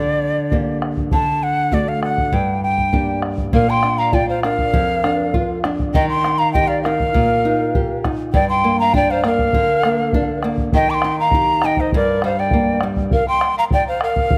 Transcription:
Already playing: nylon-string guitar D3, quena D5
0.52 nylon-string guitar A#3 D4 G4, bombo low
0.82 bombo rim
0.97 bombo low
1.11 nylon-string guitar D3, quena A5, bombo low
1.43 quena F#5
1.72 nylon-string guitar A3 D4 F#4, quena D5, bombo low
1.88 quena F5
2.03 quena F#5, bombo rim
2.18 bombo low
2.32 nylon-string guitar G2, quena G5, bombo low
2.63 quena G5
2.78 bombo low
2.92 nylon-string guitar A#3 D4 G4, bombo low
3.22 bombo rim
3.38 bombo low
3.53 nylon-string guitar A#2, pan flute A#4, quena F5, bombo low
3.69 pan flute G5, quena C6
3.83 nylon-string guitar D4, bombo rim
3.99 pan flute F5, quena A#5
4.12 nylon-string guitar F4, pan flute D5, quena G5, bombo low
4.29 pan flute C5, quena F5
4.43 nylon-string guitar D4, pan flute A#4, quena F5, bombo rim
4.58 bombo low
4.73 nylon-string guitar F2, bombo low
5.04 nylon-string guitar D4, bombo rim
5.34 nylon-string guitar F4, bombo low
5.64 nylon-string guitar D4, bombo rim
5.79 bombo low
5.94 nylon-string guitar D#3, pan flute D#5, quena G5, bombo low
6.09 pan flute G5, quena C6
6.24 nylon-string guitar D#4, bombo rim
6.38 pan flute F5, quena A#5
6.53 nylon-string guitar G4, pan flute D#5, quena G5, bombo low
6.67 pan flute D5, quena F5
6.82 nylon-string guitar D#4, pan flute A#4, quena F5, bombo rim
7.00 bombo low
7.14 nylon-string guitar A#2, bombo low
7.45 nylon-string guitar D#4
7.75 nylon-string guitar G4, bombo low
8.04 nylon-string guitar D#4, bombo rim, bombo low
8.33 nylon-string guitar G2, pan flute D5, quena G5, bombo low
8.49 pan flute G5, quena C6
8.64 nylon-string guitar A#3
8.79 pan flute F5, quena A#5
8.94 nylon-string guitar D4, pan flute D5, quena G5, bombo low
9.11 pan flute C5, quena F5
9.24 nylon-string guitar A#3, pan flute A#4, quena F5, bombo rim
9.39 bombo low
9.53 nylon-string guitar D3, bombo low
9.83 nylon-string guitar A#3, bombo rim
10.13 nylon-string guitar D4, bombo low
10.43 nylon-string guitar A#3, bombo rim
10.57 bombo low
10.72 nylon-string guitar D#3, pan flute D#5, quena G5, bombo low
10.90 pan flute G5, quena D6
10.94 quena C6
11.02 nylon-string guitar D#4, bombo rim
11.20 pan flute F5, quena A#5
11.31 nylon-string guitar G4, bombo low
11.62 nylon-string guitar D#4, pan flute D#5, quena G5, bombo rim
11.77 pan flute C5, quena D#5, bombo low
11.92 nylon-string guitar G2, pan flute A#4, quena D5, bombo low
12.22 nylon-string guitar G3, pan flute C5, quena F5, bombo rim
12.38 pan flute D5, quena G5
12.51 nylon-string guitar A#3, bombo low
12.81 nylon-string guitar G3, bombo rim
12.96 bombo low
13.11 pan flute A#4, quena F5, bombo low
13.27 pan flute G5, quena C6
13.41 bombo rim
13.58 pan flute F5, quena A#5
13.71 pan flute D5, quena G5, bombo low
13.88 pan flute C5, quena F5
14.01 pan flute A#4, quena F5, bombo rim
14.16 bombo low
14.31 bombo low

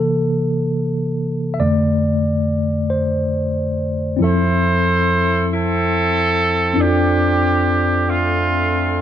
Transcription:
Already playing: tine electric piano C3 E3 A#3 A4
1.54 tine electric piano E5
1.60 tine electric piano F2 D3 A3 D5
2.90 tine electric piano C5
4.17 tine electric piano F2 F3 C4 E4
4.22 horn section E4 A4 C5, tine electric piano A4 E5
5.52 horn section C4 E4 A4
6.74 tine electric piano F2 C4 D4 E4
6.79 horn section C4 D4 G4, tine electric piano A4 D5
6.84 tine electric piano F4
8.07 horn section A3 C4 F4

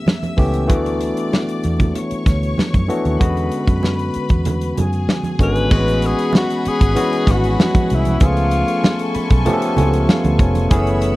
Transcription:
Already playing: tine electric piano E3 A3 B3 C#4 G4, string section E5 E6
0.06 snare, high conga
0.23 closed hi-hat, high conga
0.37 fingered electric bass C#2, tine electric piano E3 A3 B3 C#4 G4, kick, open hi-hat
0.54 closed hi-hat
0.67 fingered electric bass D2, tine electric piano E3 A3 B3 D4 F#4, string section D5 D6, kick, closed hi-hat, muted conga
0.86 closed hi-hat
1.01 closed hi-hat
1.17 closed hi-hat
1.33 snare, high conga
1.49 closed hi-hat
1.64 fingered electric bass E2, closed hi-hat, muted conga
1.80 kick, closed hi-hat, low conga
1.95 string section C#5 C#6, closed hi-hat, muted conga
2.11 muted fingered electric bass stroke, closed hi-hat
2.26 fingered electric bass D2, kick, snare, closed hi-hat, muted conga
2.43 closed hi-hat
2.58 muted fingered electric bass stroke, snare, high conga
2.74 fingered electric bass F#2, kick, closed hi-hat, high conga
2.88 tine electric piano E3 A3 B3 D4 F#4, closed hi-hat
3.05 fingered electric bass D#2, closed hi-hat
3.19 fingered electric bass E2, tine electric piano D3 G#3 B3 C#4 F#4, string section B4 B5, kick, closed hi-hat, muted conga
3.37 closed hi-hat
3.52 closed hi-hat
3.67 fingered electric bass F#2, kick, closed hi-hat
3.83 snare, high conga
3.99 closed hi-hat
4.14 muted fingered electric bass stroke, closed hi-hat
4.29 fingered electric bass E2, kick, closed hi-hat
4.45 closed hi-hat, muted conga, low conga
4.61 closed hi-hat
4.77 fingered electric bass F#2, string section G#4 G#5, closed hi-hat, muted conga, low conga
4.93 closed hi-hat
5.08 snare, high conga
5.23 closed hi-hat, high conga
5.39 fingered electric bass G#1, tine electric piano D3 G#3 B3 C#4 F#4, kick, closed hi-hat
5.43 tenor saxophone B4
5.56 closed hi-hat
5.70 fingered electric bass A1, tine electric piano E3 G#3 B3 C4 F#4, tonewheel organ G#3 B3 C#4 F#4, string section G#4 F#5 B5, kick, crash, muted conga
5.77 tine electric piano C#4
5.88 closed hi-hat
6.02 closed hi-hat
6.06 tenor saxophone G#4
6.19 closed hi-hat
6.33 snare, high conga
6.37 tenor saxophone F#4
6.50 closed hi-hat
6.65 tenor saxophone G#4, muted fingered electric bass stroke, closed hi-hat
6.81 fingered electric bass G#1, kick, closed hi-hat
6.95 tine electric piano E3 G#3 B3 C#4 F#4, closed hi-hat, muted conga
7.13 closed hi-hat
7.27 fingered electric bass G#1, kick, snare, closed hi-hat, muted conga
7.31 tenor saxophone F#4
7.44 closed hi-hat
7.59 tenor saxophone F#4, snare, high conga
7.75 kick, closed hi-hat, high conga
7.90 fingered electric bass C2, closed hi-hat
7.94 tenor saxophone E4
8.05 closed hi-hat, high conga
8.20 fingered electric bass C#2, tine electric piano F3 A3 B3 C#4 G#4, tonewheel organ A3 B3 F4, string section A4 G#5 C#6, kick, closed hi-hat, muted conga
8.25 tenor saxophone F4
8.37 closed hi-hat
8.51 closed hi-hat
8.68 closed hi-hat
8.84 snare, high conga
8.99 closed hi-hat
9.15 tine electric piano B5, muted fingered electric bass stroke, closed hi-hat, muted conga
9.30 fingered electric bass B1, kick, closed hi-hat
9.45 tine electric piano F3 A3 B3 C#4 G4 A5, closed hi-hat, muted conga, low conga
9.53 tine electric piano A4
9.62 closed hi-hat
9.77 fingered electric bass C#2, tine electric piano G#5, closed hi-hat, muted conga, low conga
9.93 closed hi-hat
10.08 tine electric piano F5, snare, high conga
10.24 fingered electric bass D2, closed hi-hat, high conga
10.39 fingered electric bass F1, tine electric piano C#5, kick, closed hi-hat
10.55 closed hi-hat, high conga
10.69 fingered electric bass F#1, tine electric piano E3 A3 B3 C#4 G#4, tonewheel organ E4 G#4, string section C#5 B5 E6, kick, closed hi-hat, muted conga
10.87 closed hi-hat
11.02 closed hi-hat

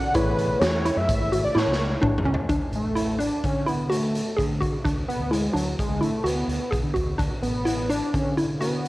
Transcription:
Already playing: tine electric piano D3 D4 F#4 A4, analog synth lead F#5
0.14 fretless electric bass A1, tine electric piano A3 E4 G#4 C#5, synth arpeggio sound E4, analog synth lead B4, kick, closed hi-hat
0.39 closed hi-hat
0.60 fretless electric bass E2, synth arpeggio sound F#4, analog synth lead C#5, snare, closed hi-hat
0.85 synth arpeggio sound E4, closed hi-hat
0.97 fretless electric bass F#2, analog synth lead E5
1.09 fretless electric bass G#1, kick, closed hi-hat
1.32 synth arpeggio sound F#4, closed hi-hat
1.45 analog synth lead D5
1.55 fretless electric bass A2, synth arpeggio sound E4, analog synth lead C#5, snare
1.67 fretless electric bass C#2
1.72 snare
2.02 fretless electric bass A1, synth arpeggio sound D4, kick, mid tom
2.18 mid tom
2.24 fretless electric bass C#2, synth arpeggio sound C#4
2.34 floor tom
2.49 fretless electric bass D2, synth arpeggio sound D4, kick, closed hi-hat
2.71 fretless electric bass A1, closed hi-hat
2.75 analog synth lead A3
2.95 synth arpeggio sound E4, closed hi-hat
3.19 synth arpeggio sound D4, analog synth lead D4, closed hi-hat
3.44 fretless electric bass D3, analog synth lead C#4, kick, closed hi-hat
3.66 analog synth lead B3, synth arpeggio sound E4, closed hi-hat
3.90 analog synth lead A3, synth arpeggio sound F#4, closed hi-hat
4.15 closed hi-hat
4.37 fretless electric bass D3, synth arpeggio sound G#4, kick, closed hi-hat
4.61 synth arpeggio sound F#4, kick, closed hi-hat
4.85 fretless electric bass D2, synth arpeggio sound D4, kick, closed hi-hat
5.08 analog synth lead B3, closed hi-hat
5.19 fretless electric bass D2
5.31 analog synth lead G#3, synth arpeggio sound E4, closed hi-hat
5.53 fretless electric bass D2, analog synth lead F#3, synth arpeggio sound D4, closed hi-hat
5.79 analog synth lead G#3, kick, closed hi-hat
5.89 fretless electric bass D2
5.99 fretless electric bass D3, analog synth lead A3, synth arpeggio sound E4, closed hi-hat
6.24 fretless electric bass D2, analog synth lead B3, synth arpeggio sound F#4, closed hi-hat
6.48 fretless electric bass D2, closed hi-hat
6.71 fretless electric bass B1, synth arpeggio sound G#4, kick, closed hi-hat
6.83 fretless electric bass D3
6.94 fretless electric bass D2, synth arpeggio sound F#4, kick, closed hi-hat
7.18 fretless electric bass D2, synth arpeggio sound D4, kick, closed hi-hat
7.42 fretless electric bass A1, analog synth lead B3, closed hi-hat
7.65 synth arpeggio sound E4, closed hi-hat
7.89 synth arpeggio sound D4, analog synth lead D4, closed hi-hat
8.14 fretless electric bass D3, analog synth lead C#4, kick, closed hi-hat
8.37 synth arpeggio sound E4, closed hi-hat
8.60 analog synth lead B3, synth arpeggio sound F#4, closed hi-hat

